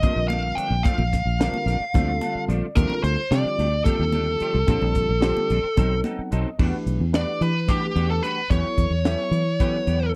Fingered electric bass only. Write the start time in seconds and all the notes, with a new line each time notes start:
0.16 A#1
0.57 muted fingered electric bass stroke
0.70 A#1
0.98 A#1
1.25 A#1
1.52 muted fingered electric bass stroke
1.66 A#1
1.80 muted fingered electric bass stroke
1.95 D2
2.35 muted fingered electric bass stroke
2.48 A#1
2.77 D#2
2.90 muted fingered electric bass stroke
3.03 D2
3.31 C3
3.45 muted fingered electric bass stroke
3.59 D2
3.99 D#2
4.41 muted fingered electric bass stroke
4.54 C2
4.68 A#1
4.82 A#1
5.09 A#1
5.37 muted fingered electric bass stroke
5.50 A#1
5.77 B1
6.19 muted fingered electric bass stroke
6.32 B1
6.59 E2
6.86 B1
7.00 E2
7.41 E3
7.96 E2
8.50 E2
8.78 E2
8.90 E2
9.31 E3
9.87 E2